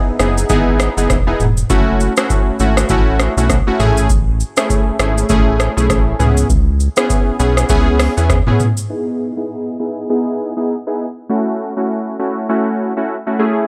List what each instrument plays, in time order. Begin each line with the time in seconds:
Already playing: synth keys B3 D#4 E4 G#4
0.19 analog synth bass F#1, synth keys B3 D#4 E4 G#4, cross-stick, shaker
0.38 shaker
0.49 analog synth bass G#1, synth keys B3 D#4 E4 G#4, kick, shaker
0.80 cross-stick, shaker
0.97 analog synth bass F#1, synth keys B3 D#4 E4 G#4, shaker
1.10 analog synth bass E1, kick, cross-stick, shaker
1.27 synth keys B3 D#4 E4 G#4
1.40 analog synth bass E1, mid tom, shaker
1.57 shaker
1.70 analog synth bass F#1, synth keys A3 C#4 E4 F#4, kick, shaker
2.00 shaker
2.17 synth keys A3 C#4 E4 F#4, cross-stick, shaker
2.30 kick, shaker
2.59 analog synth bass G#1, synth keys A3 C#4 E4 F#4, shaker
2.77 cross-stick, shaker
2.89 analog synth bass A1, synth keys A3 C#4 E4 F#4, kick, shaker
3.19 cross-stick, shaker
3.37 analog synth bass B1, synth keys A3 C#4 E4 F#4, shaker
3.50 kick, cross-stick, shaker
3.67 synth keys A3 C#4 E4 F#4
3.79 analog synth bass A1, synth keys A3 C#4 E4 G#4, mid tom, shaker
3.97 shaker
4.10 kick, shaker
4.40 shaker
4.57 synth keys A3 C#4 E4 G#4, cross-stick, shaker
4.70 kick, shaker
4.99 analog synth bass G#1, synth keys A3 C#4 E4 G#4, cross-stick, shaker
5.18 shaker
5.29 analog synth bass A1, synth keys A3 C#4 E4 G#4, kick, shaker
5.60 cross-stick, shaker
5.77 analog synth bass B1, synth keys A3 C#4 E4 G#4, shaker
5.90 analog synth bass A1, kick, cross-stick, shaker
6.19 analog synth bass C#2, synth keys B3 C#4 E4 G#4, mid tom, shaker
6.37 shaker
6.50 analog synth bass C#2, kick, shaker
6.80 shaker
6.97 synth keys B3 C#4 E4 G#4, cross-stick, shaker
7.10 kick, shaker
7.39 analog synth bass B1, synth keys B3 C#4 E4 G#4, shaker
7.57 cross-stick, shaker
7.69 analog synth bass C#2, synth keys B3 C#4 E4 G#4, kick, shaker
7.99 cross-stick, open hi-hat, shaker
8.17 analog synth bass E2, synth keys B3 C#4 E4 G#4, shaker
8.30 kick, cross-stick, shaker
8.47 synth keys B3 C#4 E4 G#4, mid tom
8.60 mid tom, shaker
8.77 shaker
8.90 synth keys B3 D#4 E4 G#4
9.37 synth keys B3 D#4 E4 G#4
9.80 synth keys B3 D#4 E4 G#4
10.09 synth keys B3 D#4 E4 G#4
10.57 synth keys B3 D#4 E4 G#4
10.87 synth keys B3 D#4 E4 G#4
11.29 synth keys A3 C#4 E4 F#4
11.77 synth keys A3 C#4 E4 F#4
12.19 synth keys A3 C#4 E4 F#4
12.49 synth keys A3 C#4 E4 F#4
12.97 synth keys A3 C#4 E4 F#4
13.27 synth keys A3 C#4 E4 F#4
13.39 synth keys A3 C#4 E4 G#4